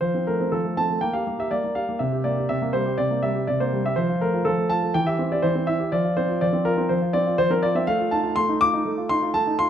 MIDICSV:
0, 0, Header, 1, 2, 480
1, 0, Start_track
1, 0, Key_signature, -1, "major"
1, 0, Tempo, 493421
1, 14, Time_signature, 4, 2, 24, 8
1, 5773, Tempo, 484653
1, 9498, End_track
2, 0, Start_track
2, 0, Title_t, "Grand piano"
2, 0, Program_c, 0, 0
2, 7, Note_on_c, 0, 72, 75
2, 12, Note_on_c, 0, 53, 53
2, 139, Note_on_c, 0, 60, 44
2, 209, Control_c, 0, 64, 127
2, 255, Note_off_c, 0, 72, 0
2, 263, Note_on_c, 0, 70, 69
2, 268, Note_on_c, 0, 57, 43
2, 333, Note_off_c, 0, 60, 0
2, 388, Note_on_c, 0, 60, 45
2, 458, Note_off_c, 0, 57, 0
2, 491, Note_off_c, 0, 53, 0
2, 504, Note_off_c, 0, 70, 0
2, 504, Note_on_c, 0, 69, 73
2, 506, Note_on_c, 0, 53, 52
2, 513, Control_c, 0, 64, 0
2, 578, Note_off_c, 0, 60, 0
2, 633, Note_on_c, 0, 57, 47
2, 743, Note_off_c, 0, 69, 0
2, 751, Note_on_c, 0, 60, 44
2, 752, Note_on_c, 0, 81, 85
2, 819, Note_off_c, 0, 57, 0
2, 876, Note_on_c, 0, 57, 49
2, 938, Note_off_c, 0, 60, 0
2, 969, Note_off_c, 0, 53, 0
2, 983, Note_on_c, 0, 79, 83
2, 986, Note_off_c, 0, 81, 0
2, 988, Note_off_c, 0, 57, 0
2, 991, Note_on_c, 0, 58, 54
2, 1101, Note_off_c, 0, 79, 0
2, 1103, Note_on_c, 0, 77, 75
2, 1108, Note_on_c, 0, 67, 42
2, 1200, Control_c, 0, 64, 127
2, 1220, Note_off_c, 0, 58, 0
2, 1235, Note_on_c, 0, 58, 44
2, 1295, Note_off_c, 0, 67, 0
2, 1340, Note_off_c, 0, 77, 0
2, 1350, Note_on_c, 0, 67, 43
2, 1359, Note_on_c, 0, 76, 73
2, 1418, Note_off_c, 0, 58, 0
2, 1467, Note_on_c, 0, 74, 75
2, 1468, Note_off_c, 0, 76, 0
2, 1468, Control_c, 0, 64, 0
2, 1472, Note_on_c, 0, 58, 49
2, 1535, Note_off_c, 0, 67, 0
2, 1581, Note_off_c, 0, 58, 0
2, 1595, Note_on_c, 0, 58, 45
2, 1702, Note_off_c, 0, 74, 0
2, 1704, Note_on_c, 0, 77, 74
2, 1707, Note_on_c, 0, 67, 44
2, 1778, Note_off_c, 0, 58, 0
2, 1835, Note_on_c, 0, 58, 44
2, 1894, Note_off_c, 0, 67, 0
2, 1937, Note_on_c, 0, 76, 62
2, 1941, Note_off_c, 0, 77, 0
2, 1946, Note_off_c, 0, 58, 0
2, 1947, Note_on_c, 0, 48, 58
2, 2066, Note_on_c, 0, 67, 46
2, 2125, Control_c, 0, 64, 127
2, 2178, Note_off_c, 0, 76, 0
2, 2179, Note_on_c, 0, 74, 74
2, 2188, Note_on_c, 0, 58, 44
2, 2254, Note_off_c, 0, 67, 0
2, 2307, Note_on_c, 0, 67, 43
2, 2375, Note_off_c, 0, 58, 0
2, 2412, Note_off_c, 0, 48, 0
2, 2418, Note_off_c, 0, 74, 0
2, 2422, Note_on_c, 0, 76, 82
2, 2427, Note_on_c, 0, 48, 51
2, 2428, Control_c, 0, 64, 0
2, 2494, Note_off_c, 0, 67, 0
2, 2546, Note_on_c, 0, 58, 46
2, 2656, Note_on_c, 0, 72, 81
2, 2660, Note_off_c, 0, 76, 0
2, 2664, Note_on_c, 0, 55, 47
2, 2734, Note_off_c, 0, 58, 0
2, 2780, Note_on_c, 0, 67, 48
2, 2853, Note_off_c, 0, 55, 0
2, 2885, Note_off_c, 0, 48, 0
2, 2895, Note_on_c, 0, 74, 82
2, 2897, Note_off_c, 0, 72, 0
2, 2899, Note_on_c, 0, 48, 51
2, 2972, Note_off_c, 0, 67, 0
2, 3021, Note_on_c, 0, 58, 43
2, 3138, Note_off_c, 0, 74, 0
2, 3138, Note_on_c, 0, 76, 76
2, 3140, Note_on_c, 0, 55, 47
2, 3212, Note_off_c, 0, 58, 0
2, 3264, Note_on_c, 0, 67, 46
2, 3333, Note_off_c, 0, 55, 0
2, 3372, Note_off_c, 0, 48, 0
2, 3379, Note_on_c, 0, 74, 78
2, 3380, Note_off_c, 0, 76, 0
2, 3386, Note_on_c, 0, 48, 52
2, 3455, Note_off_c, 0, 67, 0
2, 3500, Note_off_c, 0, 74, 0
2, 3505, Note_on_c, 0, 72, 72
2, 3508, Note_on_c, 0, 58, 45
2, 3628, Note_on_c, 0, 55, 48
2, 3697, Note_off_c, 0, 58, 0
2, 3744, Note_off_c, 0, 72, 0
2, 3747, Note_on_c, 0, 67, 48
2, 3751, Note_on_c, 0, 76, 79
2, 3817, Note_off_c, 0, 55, 0
2, 3851, Note_off_c, 0, 48, 0
2, 3852, Note_on_c, 0, 72, 79
2, 3863, Note_on_c, 0, 53, 61
2, 3865, Note_off_c, 0, 67, 0
2, 3867, Note_off_c, 0, 76, 0
2, 3980, Note_on_c, 0, 65, 48
2, 4082, Control_c, 0, 64, 127
2, 4098, Note_off_c, 0, 72, 0
2, 4099, Note_on_c, 0, 70, 77
2, 4105, Note_on_c, 0, 57, 46
2, 4174, Note_off_c, 0, 65, 0
2, 4222, Note_on_c, 0, 65, 47
2, 4295, Note_off_c, 0, 57, 0
2, 4321, Note_off_c, 0, 53, 0
2, 4328, Note_on_c, 0, 69, 83
2, 4335, Note_on_c, 0, 53, 54
2, 4340, Note_off_c, 0, 70, 0
2, 4351, Control_c, 0, 64, 0
2, 4413, Note_off_c, 0, 65, 0
2, 4456, Note_on_c, 0, 57, 46
2, 4567, Note_on_c, 0, 81, 96
2, 4574, Note_off_c, 0, 69, 0
2, 4575, Note_on_c, 0, 65, 52
2, 4649, Note_off_c, 0, 57, 0
2, 4697, Note_on_c, 0, 57, 50
2, 4768, Note_off_c, 0, 65, 0
2, 4801, Note_off_c, 0, 53, 0
2, 4809, Note_on_c, 0, 79, 90
2, 4811, Note_on_c, 0, 52, 59
2, 4812, Note_off_c, 0, 81, 0
2, 4817, Note_off_c, 0, 57, 0
2, 4928, Note_on_c, 0, 76, 81
2, 4932, Note_on_c, 0, 67, 50
2, 4933, Note_off_c, 0, 79, 0
2, 4995, Control_c, 0, 64, 127
2, 5046, Note_on_c, 0, 60, 49
2, 5126, Note_off_c, 0, 67, 0
2, 5170, Note_on_c, 0, 67, 48
2, 5172, Note_off_c, 0, 76, 0
2, 5174, Note_on_c, 0, 74, 78
2, 5243, Note_off_c, 0, 60, 0
2, 5271, Note_off_c, 0, 52, 0
2, 5277, Note_on_c, 0, 72, 83
2, 5286, Note_on_c, 0, 52, 59
2, 5295, Note_off_c, 0, 74, 0
2, 5309, Control_c, 0, 64, 0
2, 5365, Note_off_c, 0, 67, 0
2, 5403, Note_on_c, 0, 60, 49
2, 5515, Note_on_c, 0, 76, 83
2, 5523, Note_on_c, 0, 64, 48
2, 5525, Note_off_c, 0, 72, 0
2, 5600, Note_off_c, 0, 60, 0
2, 5642, Note_on_c, 0, 67, 51
2, 5720, Note_off_c, 0, 64, 0
2, 5753, Note_off_c, 0, 52, 0
2, 5759, Note_on_c, 0, 74, 86
2, 5762, Note_on_c, 0, 53, 64
2, 5763, Note_off_c, 0, 76, 0
2, 5767, Note_off_c, 0, 67, 0
2, 5881, Note_on_c, 0, 65, 49
2, 5936, Control_c, 0, 64, 127
2, 6003, Note_on_c, 0, 72, 80
2, 6009, Note_off_c, 0, 74, 0
2, 6010, Note_on_c, 0, 60, 45
2, 6082, Note_off_c, 0, 65, 0
2, 6119, Note_on_c, 0, 65, 49
2, 6206, Note_off_c, 0, 60, 0
2, 6237, Note_off_c, 0, 53, 0
2, 6245, Note_on_c, 0, 74, 87
2, 6251, Note_off_c, 0, 72, 0
2, 6252, Note_on_c, 0, 53, 62
2, 6272, Control_c, 0, 64, 0
2, 6321, Note_off_c, 0, 65, 0
2, 6361, Note_on_c, 0, 60, 53
2, 6482, Note_on_c, 0, 70, 89
2, 6489, Note_on_c, 0, 65, 56
2, 6492, Note_off_c, 0, 74, 0
2, 6561, Note_off_c, 0, 60, 0
2, 6603, Note_on_c, 0, 60, 55
2, 6685, Note_off_c, 0, 65, 0
2, 6713, Note_off_c, 0, 53, 0
2, 6720, Note_on_c, 0, 72, 72
2, 6728, Note_on_c, 0, 53, 56
2, 6729, Note_off_c, 0, 70, 0
2, 6801, Note_off_c, 0, 60, 0
2, 6845, Note_on_c, 0, 65, 51
2, 6960, Note_on_c, 0, 74, 90
2, 6965, Note_on_c, 0, 60, 53
2, 6967, Note_off_c, 0, 72, 0
2, 7041, Note_off_c, 0, 65, 0
2, 7090, Note_on_c, 0, 65, 51
2, 7161, Note_off_c, 0, 60, 0
2, 7194, Note_off_c, 0, 53, 0
2, 7207, Note_off_c, 0, 74, 0
2, 7207, Note_on_c, 0, 72, 94
2, 7209, Note_on_c, 0, 53, 58
2, 7284, Note_off_c, 0, 65, 0
2, 7326, Note_on_c, 0, 60, 53
2, 7331, Note_off_c, 0, 72, 0
2, 7331, Note_on_c, 0, 70, 80
2, 7447, Note_on_c, 0, 74, 87
2, 7453, Note_off_c, 0, 70, 0
2, 7453, Note_on_c, 0, 65, 54
2, 7522, Note_off_c, 0, 60, 0
2, 7571, Note_off_c, 0, 74, 0
2, 7571, Note_on_c, 0, 60, 52
2, 7577, Note_on_c, 0, 76, 74
2, 7646, Note_off_c, 0, 65, 0
2, 7678, Note_off_c, 0, 53, 0
2, 7692, Note_on_c, 0, 77, 96
2, 7693, Note_off_c, 0, 60, 0
2, 7696, Note_off_c, 0, 76, 0
2, 7696, Note_on_c, 0, 57, 68
2, 7806, Note_on_c, 0, 65, 54
2, 7867, Control_c, 0, 64, 127
2, 7931, Note_on_c, 0, 81, 86
2, 7934, Note_off_c, 0, 77, 0
2, 7935, Note_on_c, 0, 63, 50
2, 8004, Note_off_c, 0, 65, 0
2, 8052, Note_on_c, 0, 65, 55
2, 8128, Note_off_c, 0, 63, 0
2, 8169, Note_off_c, 0, 57, 0
2, 8172, Note_on_c, 0, 84, 102
2, 8174, Note_off_c, 0, 81, 0
2, 8184, Note_on_c, 0, 57, 58
2, 8191, Control_c, 0, 64, 0
2, 8246, Note_off_c, 0, 65, 0
2, 8303, Note_on_c, 0, 63, 53
2, 8413, Note_off_c, 0, 84, 0
2, 8421, Note_on_c, 0, 86, 114
2, 8423, Note_on_c, 0, 65, 54
2, 8490, Note_off_c, 0, 63, 0
2, 8546, Note_on_c, 0, 63, 55
2, 8610, Note_off_c, 0, 65, 0
2, 8649, Note_off_c, 0, 57, 0
2, 8664, Note_on_c, 0, 57, 54
2, 8732, Note_off_c, 0, 63, 0
2, 8784, Note_on_c, 0, 65, 50
2, 8897, Note_off_c, 0, 86, 0
2, 8903, Note_on_c, 0, 84, 101
2, 8910, Note_on_c, 0, 63, 55
2, 8971, Note_off_c, 0, 65, 0
2, 9030, Note_on_c, 0, 65, 54
2, 9093, Note_off_c, 0, 63, 0
2, 9135, Note_off_c, 0, 57, 0
2, 9137, Note_off_c, 0, 84, 0
2, 9145, Note_on_c, 0, 81, 98
2, 9150, Note_on_c, 0, 57, 57
2, 9213, Note_off_c, 0, 65, 0
2, 9273, Note_on_c, 0, 63, 50
2, 9379, Note_off_c, 0, 81, 0
2, 9392, Note_on_c, 0, 84, 102
2, 9399, Note_on_c, 0, 65, 56
2, 9455, Note_off_c, 0, 63, 0
2, 9498, Note_off_c, 0, 57, 0
2, 9498, Note_off_c, 0, 65, 0
2, 9498, Note_off_c, 0, 84, 0
2, 9498, End_track
0, 0, End_of_file